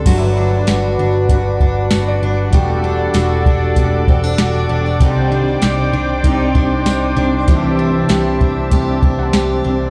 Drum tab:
CC |x-------|--------|--------|--------|
HH |x-x-x-x-|x-x-x-x-|x-x-x-x-|x-x-x-x-|
TB |--x---x-|--x---x-|--x---x-|--x---x-|
SD |--o---o-|--o---o-|--o---o-|--o---o-|
BD |o---oo--|o--ooo--|o---oo--|o--ooo--|